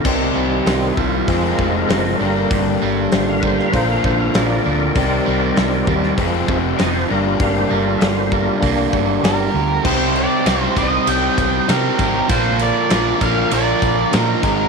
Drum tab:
CC |x---------------|----------------|----------------|----------------|
RD |----------------|----------------|----------------|----------------|
HH |----o---o---o---|o---o---o---o---|o---o---o---o---|o---o---o---o---|
SD |----o-------o---|----o--o----o---|----o--o----o---|----o-------o---|
BD |o-----o-o-o-----|o-----o-o-o-----|o-----o-o-o-----|o-----o-o-o-----|

CC |x---------------|----------------|
RD |--x-x-x-x-x-x-x-|x-x-x-x-x-x-x-x-|
HH |----------------|----------------|
SD |----o-------o---|----o-------o---|
BD |o-----o---o---o-|o-----o---o---o-|